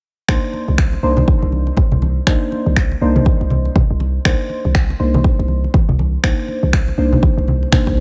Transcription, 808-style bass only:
0.29 C2
0.68 C2
1.03 C2
1.43 C2
1.92 C2
2.27 C2
2.66 C2
3.01 C2
3.41 C2
3.90 C2
4.25 C2
4.65 C2
5.00 C2
5.39 C2
5.89 C2
6.24 C2
6.63 C2
6.98 C2
7.37 C2
7.87 C2

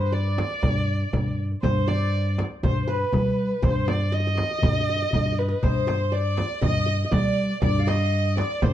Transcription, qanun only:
Already playing: G4 B4
0.12 D5
1.64 C5
1.88 D5
2.63 C5
2.88 B4
3.62 C5
4.12 D#5
4.20 D#5
4.27 D#5
4.35 D#5
4.43 D#5
4.51 D#5
4.59 D#5
4.73 D#5
4.81 D#5
4.89 D#5
4.97 D#5
5.02 D#5
5.11 D#5
5.16 D#5
5.26 D#5
5.32 D#5
5.41 D#5
5.48 D#5
5.63 C5
5.87 C5
6.12 D5
6.62 D#5
6.86 D#5
7.05 D#5
7.11 D5
7.62 D5
7.79 F5
7.87 D#5
8.37 D5
8.62 C5

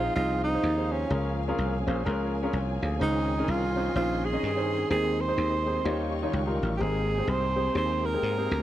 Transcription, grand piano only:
Already playing: C5
0.16 D#4 F4 G#4 D#5
0.53 D#4 F4 G#4 C5
0.77 D#4 F4 G#4 C5
1.10 C#3 C#4 F4 G#4 A#4
1.48 C#4 F4 G#4 A#4
1.87 C#4 F4 G#4 C5
2.05 C#4 F4 G#4 A#4
2.43 C#4 F4 G#4 A#4
2.53 F4 C#5
2.82 G#4 F5
2.99 C#3 C#4 D#4 G#4 C5
3.39 C#4 D#4 G#4 A#4
3.76 C#4 D#4 G#4 C5
3.95 C#4 D#4 G#4 C5
4.33 C#4 D#4 G#4 D#5
4.57 C#4 D#4 G#4 C5
4.90 D#3 C4 D#4 G#4 C5
5.28 C4 D#4 G#4 C5
5.66 C4 D#4 G#4 C5
5.84 D#3 D#4 F4 G4 C#5
6.23 D#4 F4 G4 C#5
6.46 D#4 F4 G4 A#4
6.79 G#2 C4 G4 G#4 A#4
7.18 C4 G4 G#4 C5
7.56 C4 G4 G#4 C5
7.74 C4 G4 G#4 C5
8.14 C4 G4 G#4 A#4
8.37 C4 G4 G#4 C5

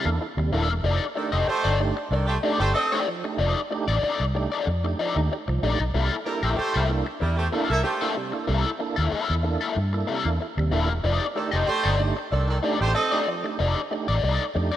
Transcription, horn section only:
1.16 D#3 D4 A4
1.32 A3 G4 C5
1.47 A3 G4 C5
2.11 D#3 D4 A4
2.27 A3 G4 C5
2.59 A3 G4 C5
2.73 C4 A4 D#5
6.25 G3 E4 A#4
6.42 A3 G4 C5
6.57 A3 G4 C5
7.21 G3 E4 A#4
7.37 A3 G4 C5
7.69 A#3 A4 E5
7.84 A3 G4 C5
11.35 D#3 D4 A4
11.53 A3 G4 C5
11.66 A3 G4 C5
12.31 D#3 D4 A4
12.48 D#3 D4 A4
12.81 A3 G4 C5
12.95 C4 A4 D#5

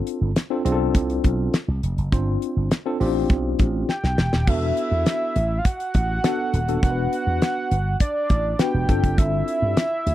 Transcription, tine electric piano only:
Already playing: C4 D4 F4 A4
0.50 C4 D4 F4 A4
0.65 C4 D4 F4 G#4
0.72 A4
2.12 C4 D4 F4 C5
2.86 C4 D4 F4 A4
3.00 C4 D4 F4 G4
4.48 B3 D4 F#4 A4
6.24 B3 D4 F#4 A4
6.68 B3 D4 F#4 A4
6.83 D4 F#4 A#4
6.90 B4
8.59 B3 D4 F#4 B4
8.89 C4 D4 F4 A4

